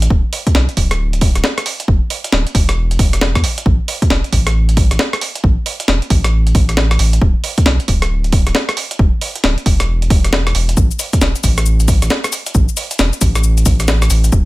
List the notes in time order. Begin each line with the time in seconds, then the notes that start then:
0.02 closed hi-hat
0.10 D1, kick
0.33 open hi-hat
0.47 kick, closed hi-hat
0.55 B1, snare
0.69 closed hi-hat
0.77 D1, kick, open hi-hat
0.91 cross-stick, closed hi-hat
1.13 closed hi-hat
1.21 kick, open hi-hat
1.35 D1, cross-stick, closed hi-hat
1.44 snare
1.58 cross-stick, closed hi-hat
1.66 open hi-hat
1.80 closed hi-hat
1.88 E1, kick
2.10 open hi-hat
2.24 closed hi-hat
2.32 D1, snare
2.47 closed hi-hat
2.55 E1, kick, open hi-hat
2.69 cross-stick, closed hi-hat
2.91 closed hi-hat
2.99 E1, kick, open hi-hat
3.13 cross-stick, closed hi-hat
3.21 snare
3.35 E2, kick, cross-stick, closed hi-hat
3.44 open hi-hat
3.58 closed hi-hat
3.66 A1, kick
3.88 open hi-hat
4.02 kick, closed hi-hat
4.10 E1, snare
4.24 closed hi-hat
4.33 A1, kick, open hi-hat
4.47 cross-stick, closed hi-hat
4.69 closed hi-hat
4.77 kick, open hi-hat
4.91 A1, cross-stick, closed hi-hat
4.99 snare
5.13 cross-stick, closed hi-hat
5.21 open hi-hat
5.35 closed hi-hat
5.44 A1, kick
5.66 open hi-hat
5.80 closed hi-hat
5.88 E1, snare
6.02 closed hi-hat
6.10 A1, kick, open hi-hat
6.24 cross-stick, closed hi-hat
6.47 closed hi-hat
6.55 A1, kick, open hi-hat
6.69 cross-stick, closed hi-hat
6.77 snare
6.91 cross-stick, closed hi-hat
6.99 A1, open hi-hat
7.13 closed hi-hat
7.22 D1, kick
7.44 open hi-hat
7.58 kick, closed hi-hat
7.66 B1, snare
7.80 closed hi-hat
7.88 D1, kick, open hi-hat
8.02 cross-stick, closed hi-hat
8.24 closed hi-hat
8.32 kick, open hi-hat
8.47 D1, cross-stick, closed hi-hat
8.55 snare
8.69 cross-stick, closed hi-hat
8.77 open hi-hat
8.91 closed hi-hat
8.99 E1, kick
9.21 open hi-hat
9.36 closed hi-hat
9.44 D1, snare
9.58 closed hi-hat
9.66 E1, kick, open hi-hat
9.80 cross-stick, closed hi-hat
10.02 closed hi-hat
10.10 E1, kick, open hi-hat
10.24 cross-stick, closed hi-hat
10.33 snare
10.47 cross-stick, closed hi-hat
10.55 E1, open hi-hat
10.69 closed hi-hat
10.77 A1, kick, shaker
10.91 shaker
10.99 open hi-hat, shaker
11.13 kick, closed hi-hat, shaker
11.21 E1, snare, shaker
11.36 closed hi-hat, shaker
11.44 A1, kick, open hi-hat, shaker
11.58 cross-stick, closed hi-hat, shaker
11.66 shaker
11.80 closed hi-hat, shaker
11.88 kick, open hi-hat, shaker
12.02 A1, cross-stick, closed hi-hat, shaker
12.10 snare, shaker
12.24 cross-stick, closed hi-hat, shaker
12.32 open hi-hat, shaker
12.46 closed hi-hat, shaker
12.55 A1, kick, shaker
12.69 shaker
12.77 open hi-hat, shaker
12.91 closed hi-hat, shaker
12.99 E1, snare, shaker
13.13 closed hi-hat, shaker
13.21 A1, kick, open hi-hat, shaker
13.35 cross-stick, closed hi-hat, shaker
13.44 shaker
13.58 closed hi-hat, shaker
13.66 A1, kick, open hi-hat, shaker
13.80 cross-stick, closed hi-hat, shaker
13.88 snare, shaker
14.02 cross-stick, closed hi-hat, shaker
14.10 A1, open hi-hat, shaker
14.24 closed hi-hat, shaker
14.32 D1, kick, shaker